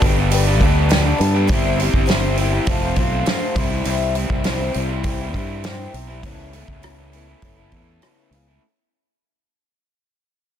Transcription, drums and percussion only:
0.02 kick, open hi-hat
0.31 open hi-hat
0.61 kick, open hi-hat
0.90 snare, open hi-hat
1.21 open hi-hat
1.49 kick, open hi-hat
1.80 open hi-hat
1.94 kick
2.09 snare, open hi-hat
2.37 open hi-hat
2.67 kick, open hi-hat
2.96 kick, open hi-hat
3.26 snare, open hi-hat
3.56 kick, open hi-hat
3.85 open hi-hat
4.15 open hi-hat
4.30 kick
4.44 snare, open hi-hat
4.74 open hi-hat
5.04 kick, open hi-hat
5.34 kick, open hi-hat
5.64 snare, open hi-hat
5.94 open hi-hat
6.23 kick, open hi-hat
6.53 open hi-hat
6.68 kick
6.83 cross-stick, open hi-hat
7.13 open hi-hat
7.42 kick, open hi-hat
7.72 kick, open hi-hat
8.02 cross-stick, open hi-hat
8.32 open hi-hat

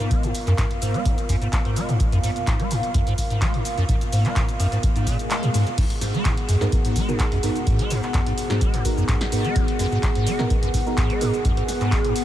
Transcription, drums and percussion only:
0.11 kick, closed hi-hat, shaker
0.23 closed hi-hat, shaker
0.35 open hi-hat, shaker
0.47 clap, closed hi-hat, shaker
0.58 kick, clap, closed hi-hat, shaker
0.71 closed hi-hat
0.82 open hi-hat, shaker
0.94 closed hi-hat, shaker
1.05 kick, closed hi-hat, shaker
1.18 closed hi-hat, shaker
1.29 kick, open hi-hat, shaker
1.42 closed hi-hat, shaker
1.53 kick, clap, closed hi-hat, shaker
1.65 closed hi-hat
1.76 open hi-hat, shaker
1.89 closed hi-hat, shaker
2.00 kick, closed hi-hat, shaker
2.12 closed hi-hat, shaker
2.24 open hi-hat, shaker
2.36 closed hi-hat, shaker
2.47 kick, clap, closed hi-hat, shaker
2.60 closed hi-hat
2.71 open hi-hat, shaker
2.83 closed hi-hat, shaker
2.94 kick, closed hi-hat, shaker
3.07 closed hi-hat, shaker
3.18 kick, open hi-hat, shaker
3.30 closed hi-hat, shaker
3.42 kick, clap, closed hi-hat, shaker
3.54 closed hi-hat
3.65 open hi-hat, shaker
3.78 closed hi-hat, shaker
3.89 kick, closed hi-hat, shaker
4.01 closed hi-hat, shaker
4.12 open hi-hat, shaker
4.25 clap, closed hi-hat, shaker
4.36 kick, clap, closed hi-hat, shaker
4.49 closed hi-hat, shaker
4.60 open hi-hat, shaker
4.72 closed hi-hat, shaker
4.83 kick, closed hi-hat, shaker
4.96 closed hi-hat, shaker
5.07 kick, open hi-hat, shaker
5.19 closed hi-hat, shaker
5.31 clap, closed hi-hat, shaker
5.43 closed hi-hat, shaker
5.54 open hi-hat, shaker
5.67 closed hi-hat, shaker
5.78 kick, closed hi-hat, crash, shaker
5.90 closed hi-hat
6.01 snare, open hi-hat, shaker
6.14 shaker
6.25 kick, clap, closed hi-hat, shaker
6.37 closed hi-hat
6.49 open hi-hat, shaker
6.61 snare, shaker
6.72 kick, closed hi-hat, shaker
6.85 closed hi-hat, shaker
6.96 kick, open hi-hat, shaker
7.09 shaker
7.20 kick, clap, closed hi-hat, shaker
7.32 closed hi-hat
7.43 open hi-hat, shaker
7.56 closed hi-hat, shaker
7.67 kick, closed hi-hat, shaker
7.79 closed hi-hat
7.90 open hi-hat, shaker
8.03 clap, shaker
8.14 kick, clap, closed hi-hat, shaker
8.26 closed hi-hat
8.38 open hi-hat, shaker
8.50 snare, shaker
8.61 kick, closed hi-hat, shaker
8.74 closed hi-hat, shaker
8.85 kick, open hi-hat, shaker
8.98 shaker
9.09 kick, clap, closed hi-hat, shaker
9.21 snare, closed hi-hat
9.32 open hi-hat, shaker
9.45 closed hi-hat, shaker
9.56 kick, closed hi-hat, shaker
9.68 closed hi-hat
9.79 snare, open hi-hat, shaker
9.92 shaker
10.03 kick, clap, closed hi-hat, shaker
10.15 closed hi-hat
10.27 open hi-hat, shaker
10.39 snare, shaker
10.50 kick, closed hi-hat, shaker
10.63 closed hi-hat, shaker
10.74 kick, open hi-hat, shaker
10.87 shaker
10.98 kick, clap, closed hi-hat, shaker
11.10 closed hi-hat
11.21 open hi-hat, shaker
11.34 closed hi-hat, shaker
11.45 kick, closed hi-hat, shaker
11.57 closed hi-hat
11.69 snare, open hi-hat, shaker
11.81 clap, closed hi-hat, shaker
11.92 kick, clap, closed hi-hat, shaker
12.05 closed hi-hat
12.16 open hi-hat, shaker

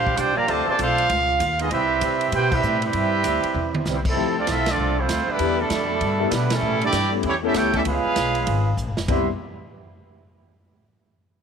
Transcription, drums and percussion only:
0.07 kick
0.17 kick, hi-hat pedal, ride
0.48 kick, ride
0.79 kick, hi-hat pedal, ride
0.98 ride
1.10 kick, ride
1.40 kick, hi-hat pedal, ride
1.59 ride
1.71 kick, ride
2.01 kick, hi-hat pedal, ride
2.21 ride
2.32 kick, ride
2.52 kick, crash
2.63 hi-hat pedal
2.82 ride
2.93 kick, ride
3.24 kick, hi-hat pedal, ride
3.43 ride
3.55 mid tom
3.75 high tom
3.85 snare, hi-hat pedal
4.05 kick, crash
4.17 kick
4.47 kick, snare, hi-hat pedal, ride
4.66 snare, ride
5.09 kick, snare, hi-hat pedal, ride
5.39 kick, ride
5.70 kick, snare, hi-hat pedal, ride
6.01 kick, ride
6.31 kick, snare, hi-hat pedal, ride
6.50 snare, ride
6.81 ride
6.93 kick, snare, hi-hat pedal, ride
7.23 kick, ride
7.54 kick, snare, hi-hat pedal, ride
7.73 kick, ride
7.85 kick, ride
8.16 kick, snare, hi-hat pedal, ride
8.35 ride
8.47 kick, ride
8.78 hi-hat pedal
8.97 snare
9.08 kick, floor tom, ride bell

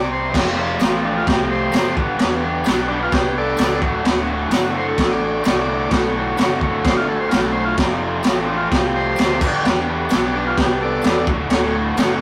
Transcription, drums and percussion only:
0.34 kick, snare, crash
0.80 snare, tambourine, crash
1.27 kick, snare, crash
1.72 snare, tambourine, crash
1.97 kick
2.19 snare, crash
2.64 snare, tambourine, crash
3.12 kick, snare, crash
3.57 snare, tambourine, crash
3.82 kick
4.05 snare, crash
4.51 snare, tambourine, crash
4.98 kick, snare, crash
5.44 snare, tambourine, crash
5.91 kick, snare, crash
6.37 snare, tambourine, crash
6.61 kick
6.85 kick, snare, crash
7.31 snare, tambourine, crash
7.77 kick, snare, crash
8.23 snare, tambourine, crash
8.71 kick, snare, crash
9.16 snare, tambourine, crash
9.41 kick, crash
9.65 snare, crash
10.09 snare, tambourine, crash
10.57 kick, snare, crash
11.02 snare, tambourine, crash
11.27 kick
11.50 snare, crash
11.97 snare, tambourine, crash

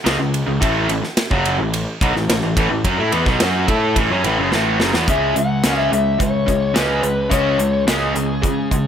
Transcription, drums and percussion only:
0.06 snare, ride
0.34 ride
0.62 kick, ride
0.89 ride
1.04 snare
1.17 snare, ride
1.31 kick
1.45 ride
1.74 ride
2.01 kick, ride
2.16 snare
2.30 snare, ride
2.57 kick, ride
2.85 kick, ride
3.12 ride
3.26 kick, snare
3.40 snare, ride
3.68 kick, ride
3.96 kick, ride
4.24 ride
4.52 snare
4.80 snare
4.93 snare
5.08 kick, closed hi-hat
5.36 closed hi-hat
5.64 snare, closed hi-hat
5.93 closed hi-hat
6.20 kick, closed hi-hat
6.48 kick, closed hi-hat
6.76 snare, closed hi-hat
7.03 closed hi-hat
7.31 kick, closed hi-hat
7.59 closed hi-hat
7.88 snare, closed hi-hat
8.16 closed hi-hat
8.43 kick, closed hi-hat
8.71 kick, closed hi-hat

